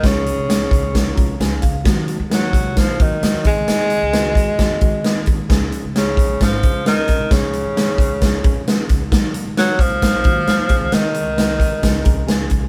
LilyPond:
<<
  \new Staff \with { instrumentName = "Reed electric piano" } { \time 4/4 \key des \major \tempo 4 = 132 r2 r8 bes''8 aes''8 f''8 | r1 | r1 | r1 |
r1 | r1 | r2 r8 bes''8 aes''4 | }
  \new Staff \with { instrumentName = "Reed electric piano" } { \time 4/4 \key des \major <f aes des' aes'>8. r16 <fes f aes des' aes'>8. r16 <f aes des' aes'>8 <f aes des' f'>8 <f aes des' ges' aes'>8. r16 | <ees ges bes ges'>8. r16 <ees ges bes aes'>8. r16 <ees ges bes ees'>8 <ees ges bes ges'>8 <ees ges bes ges'>8 <ees aes c' aes'>8~ | <ees aes c' aes'>8 r8 <ees aes c' f' ges'>8. r16 <ees aes c' ges'>8 <ees aes c' ges'>8 <ees aes c' aes'>8. r16 | <f aes des' aes'>8. r16 <f aes des' g' aes'>8. r16 <f aes des' aes'>8 <f aes des' aes'>8 <f aes des' ges' aes'>8. r16 |
<f aes des' aes'>8. r16 <f aes des' aes'>8. r16 <f aes des' aes'>8 <f aes des' aes'>8 <f aes des' aes'>8. r16 | <ges bes ees' bes'>8. r16 <ges bes ees' bes'>8. r16 <ges bes ees' bes'>8 <ges bes ees' ges'>8 <ges bes ees' bes'>8 <ees aes c' aes'>8~ | <ees aes c' aes'>8 r8 <ees aes c' bes'>8. r16 <f aes des' aes'>8 <f aes des' aes'>8 <f aes des' aes'>8. r16 | }
  \new Staff \with { instrumentName = "Tenor saxophone" } { \clef bass \time 4/4 \key des \major des2. r4 | r4 ges4 f8 ees4 aes8~ | aes2.~ aes8 r8 | r4 des4 f4 ees4 |
des2. r4 | r4 ges8 f2~ f8 | ees2. r4 | }
  \new Staff \with { instrumentName = "Upright bass" } { \clef bass \time 4/4 \key des \major des,8. c,8. des,4 c,8 des,8 des,8 | ees,8 r16 ees,8. c,8 bes,,8 ees8 ees,16 r16 ees,16 des,16 | ees,8. des,8. f,4 ees,4 ees,8 | des,8 r16 des,8. bes,,8 aes,,8 des8 des,16 r16 bes,,16 c,16 |
des,8. ees,8. des,4 f,8 ees,8 des,8 | ees,8 r16 ees,8. c,8 bes,,8 ees8 ees,16 r16 ees,16 des,16 | ees,8. c,8. ees,8 des,8 c,8 des,8 c,8 | }
  \new DrumStaff \with { instrumentName = "Drums" } \drummode { \time 4/4 <hh bd sn>8 hh8 <hh sn>8 <hh bd>8 <hh bd sn>8 <hh bd>8 <hh sn>8 <hh bd>8 | <hh bd sn>8 hh8 <hh sn>8 <hh bd>8 <hh bd sn>8 <hh bd>8 <hh sn>8 <hh bd>8 | <hh sn>8 hh8 <hh sn>8 <hh bd>8 <hh bd sn>8 <hh bd>8 <hh sn>8 <hh bd>8 | <hh bd sn>8 hh8 <hh sn>8 <hh bd>8 <hh bd sn>8 <hh bd>8 <hh sn>8 <hh bd sn>8 |
<hh bd sn>8 hh8 <hh sn>8 <hh bd>8 <hh bd sn>8 <hh bd>8 <hh sn>8 <hh bd sn>8 | <hh bd sn>8 hh8 <hh sn>8 <hh bd>8 <hh bd sn>8 <hh bd>8 <hh sn>8 <hh bd sn>8 | <hh sn>8 hh8 <hh sn>8 <hh bd>8 <hh bd sn>8 <hh bd>8 <hh sn>8 <hh bd>8 | }
>>